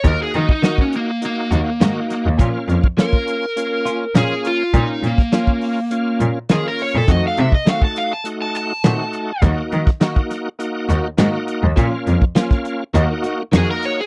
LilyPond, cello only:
\new Staff \with { instrumentName = "Cello" } { \clef bass \time 4/4 \key bes \minor \tempo 4 = 102 ees,8 ees8 r4. ees,16 r16 aes,8. ees,16 | bes,8 f,2~ f,8 bes,8 r8 | bes,8 bes,8 r4. bes,16 r16 ees8. bes,16 | f,8 c2~ c8 bes,8 r8 |
ees,8 ees8 r4. ees,16 r16 aes,8. ees,16 | bes,8 f,4. ees,4 f,8 r8 | }